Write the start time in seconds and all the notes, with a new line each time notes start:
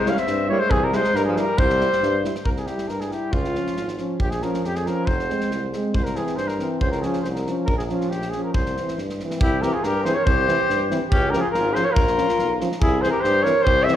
Already playing: G#3 C5
0.06 G3 E4 F5, snare
0.11 C#4
0.17 C4 E5, snare
0.26 G2, snare
0.48 G3 A#3 E4 C#5
0.59 G#3 C5
0.70 C2 E3 G#4, kick
0.82 G3 A#4
0.92 G3 G#3 E4 C5, snare
1.04 snare
1.13 G2 G3 A#4, snare
1.24 F3 G#4
1.36 G3 E4 A#4, snare
1.58 C2 G3 C5, kick
1.70 snare
1.79 G3 E4, snare
1.93 snare
2.01 G2, snare
2.23 G3 E4, snare
2.35 snare
2.44 C2 A#4, kick
2.57 G#4, snare
2.66 G3 E4 G4, snare
2.78 snare
2.88 G2 A#4, snare
3.01 G#4, snare
3.11 G3 E4 G4, snare
3.32 C#2 F4, kick
3.44 snare
3.55 F3 C#4, snare
3.67 snare
3.76 G#1, snare
3.88 snare
3.98 F3 C#4, snare
4.19 A#1 G4, kick
4.30 G#4, snare
4.42 F3 C#4 A#4, snare
4.54 snare
4.63 F2 G4, snare
4.75 G#4, snare
4.85 F3 C#4 A#4, snare
5.06 F1 C5, kick
5.19 snare
5.29 G#3 C4, snare
5.41 snare
5.50 C2, snare
5.72 G#3 C4, snare
5.93 C2 C5, kick
6.04 A#4, snare
6.15 E3 C4 G#4, snare
6.27 snare
6.36 G2 C5, snare
6.48 A#4, snare
6.58 E3 C4, snare
6.81 C#2 C5, kick
6.91 A#4, snare
7.02 F3 C#4 G#4, snare
7.13 snare
7.21 C2 C5, snare
7.33 A#4, snare
7.46 F3 C#4, snare
7.65 A#1 A#4, kick
7.77 G#4, snare
7.89 F3 C#4, snare
7.95 F4
8.01 snare
8.09 A#1 G4, snare
8.22 snare
8.30 C#4 G#4, snare
8.34 F3
8.43 A#4
8.53 C2 C5, kick
8.66 snare
8.76 E3 C4, snare
8.88 snare
8.98 G2, snare
9.10 snare
9.20 E3 C4, snare
9.31 snare
9.40 C2 E4 G4, kick
9.62 E3 C4 G4 A#4, snare
9.73 F4 G#4
9.84 G2 G4 A#4, snare
10.04 E3 C4 G#4 C5, snare
10.14 A#4 C#5
10.24 C2 G4 C5, kick
10.48 E3 C4, snare
10.69 G2, snare
10.90 E3 C4, snare
11.09 C#2 C#4 G4, kick
11.30 F3 C#4 G4 A#4, snare
11.40 F4 G#4
11.50 G#1 F4 A#4
11.54 snare
11.72 F3 C#4 G#4 C5, snare
11.84 A#4 C#5
11.93 A#1 F4 A#4, kick
12.07 snare
12.18 F3 C#4, snare
12.29 snare
12.39 B1, snare
12.60 F3 C#4, snare
12.72 snare
12.80 C2 E4 G#4, kick
13.01 E3 C4 G#4 C5, snare
13.10 G4 A#4
13.21 G2 G4 C5, snare
13.42 E3 C4 A#4 C#5, snare
13.62 G4 C5
13.66 C2, kick
13.83 C4 C5 E5
13.88 E3, snare